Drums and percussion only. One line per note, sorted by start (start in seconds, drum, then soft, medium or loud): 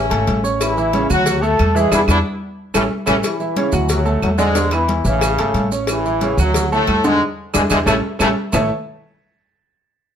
0.10 cowbell medium
0.10 high conga soft
0.10 maracas soft
0.27 cowbell medium
0.27 high conga medium
0.27 maracas soft
0.44 high conga soft
0.44 maracas medium
0.61 cowbell loud
0.61 high conga soft
0.61 claves medium
0.61 maracas medium
0.77 high conga soft
0.77 maracas soft
0.93 cowbell medium
0.93 high conga medium
0.93 maracas soft
1.10 low conga medium
1.10 claves medium
1.10 maracas medium
1.26 cowbell loud
1.26 high conga soft
1.26 low conga medium
1.26 maracas loud
1.43 high conga soft
1.43 maracas soft
1.59 cowbell medium
1.59 high conga medium
1.59 claves medium
1.59 maracas soft
1.76 high conga medium
1.76 maracas medium
1.92 cowbell loud
1.92 high conga medium
1.92 claves medium
1.92 maracas loud
2.08 cowbell medium
2.08 high conga loud
2.08 claves loud
2.08 maracas loud
2.74 cowbell loud
2.74 high conga loud
2.74 claves loud
2.74 maracas loud
3.07 cowbell loud
3.07 high conga medium
3.07 claves loud
3.07 maracas medium
3.23 cowbell loud
3.23 high conga soft
3.23 claves medium
3.23 maracas medium
3.40 high conga soft
3.40 maracas soft
3.56 cowbell medium
3.56 high conga medium
3.56 maracas soft
3.72 low conga medium
3.72 claves medium
3.72 maracas medium
3.89 cowbell loud
3.89 high conga soft
3.89 low conga medium
3.89 maracas medium
4.06 high conga soft
4.06 maracas soft
4.22 cowbell medium
4.22 high conga medium
4.22 claves medium
4.22 maracas soft
4.38 high conga medium
4.38 maracas medium
4.55 cowbell loud
4.55 high conga soft
4.55 maracas medium
4.71 cowbell medium
4.71 high conga soft
4.71 claves medium
4.71 maracas soft
4.89 cowbell medium
4.89 high conga medium
4.89 maracas soft
5.05 maracas medium
5.21 cowbell loud
5.21 high conga soft
5.21 claves medium
5.21 maracas medium
5.39 cowbell medium
5.39 high conga soft
5.39 maracas soft
5.54 cowbell medium
5.54 high conga medium
5.54 maracas soft
5.72 maracas medium
5.87 cowbell loud
5.87 high conga soft
5.87 claves medium
5.87 maracas medium
6.05 high conga soft
6.05 maracas soft
6.21 cowbell medium
6.21 high conga medium
6.21 maracas soft
6.38 low conga medium
6.38 claves medium
6.38 maracas medium
6.54 cowbell loud
6.54 high conga soft
6.54 low conga medium
6.54 maracas medium
6.72 high conga soft
6.72 maracas soft
6.87 cowbell medium
6.87 high conga medium
6.87 claves medium
6.87 maracas soft
7.04 high conga medium
7.04 maracas medium
7.54 cowbell medium
7.54 high conga medium
7.54 claves loud
7.54 maracas loud
7.70 cowbell loud
7.70 high conga loud
7.70 claves medium
7.70 maracas loud
7.87 cowbell loud
7.87 high conga medium
7.87 claves loud
7.87 maracas medium
8.20 cowbell medium
8.20 high conga loud
8.20 claves loud
8.20 maracas loud
8.53 low bongo loud
8.53 low conga loud
8.53 claves medium
8.53 maracas loud